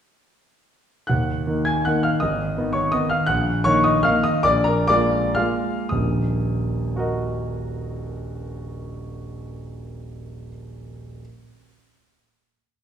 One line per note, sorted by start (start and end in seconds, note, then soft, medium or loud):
1.07 1.46 D#2 soft
1.07 1.62 F#5 medium
1.07 1.65 F#6 medium
1.47 1.82 D#3 soft
1.47 1.82 A#3 soft
1.47 1.82 D#4 soft
1.65 1.84 G#5 medium
1.65 1.85 G#6 medium
1.85 2.19 D#3 soft
1.85 2.19 A#3 soft
1.85 2.19 D#4 soft
1.85 2.03 F#5 medium
1.85 2.04 F#6 medium
2.03 2.20 F5 soft
2.03 2.21 F6 medium
2.20 2.56 G#1 soft
2.20 2.71 D#5 medium
2.20 2.74 D#6 medium
2.57 2.90 D#3 soft
2.57 2.90 B3 soft
2.57 2.90 D#4 soft
2.73 2.91 C#5 medium
2.73 2.92 C#6 medium
2.92 3.26 D#3 soft
2.92 3.26 B3 soft
2.92 3.27 D#4 soft
2.92 3.10 D#5 medium
2.92 3.11 D#6 medium
3.10 3.28 F5 medium
3.10 3.28 F6 medium
3.26 3.65 A#1 medium
3.26 3.63 F#5 medium
3.26 3.65 F#6 medium
3.64 4.02 D#3 soft
3.64 4.03 A#3 medium
3.64 4.03 D#4 medium
3.64 3.84 C#5 medium
3.64 3.85 C#6 loud
3.84 4.04 D#5 medium
3.84 4.05 D#6 medium
4.03 4.42 D#3 soft
4.03 4.43 A#3 soft
4.03 4.43 D#4 medium
4.03 4.24 F5 medium
4.03 4.25 F6 loud
4.24 4.44 D#5 medium
4.24 4.45 D#6 medium
4.43 4.87 A#1 medium
4.43 4.65 D5 medium
4.43 4.66 D6 loud
4.64 4.87 A#4 medium
4.64 4.88 A#5 medium
4.88 5.33 G#3 soft
4.88 5.34 A#3 medium
4.88 5.34 F4 medium
4.88 5.34 D5 medium
4.88 5.36 D6 loud
5.35 5.88 G#3 soft
5.35 5.88 A#3 soft
5.35 5.88 F4 medium
5.35 5.87 F5 medium
5.35 5.91 F6 medium
5.89 10.48 D#1 medium
5.89 10.48 A#1 soft
5.89 10.47 D#6 medium
6.96 10.49 F#4 soft
6.96 10.50 A#4 soft
6.96 10.51 D#5 soft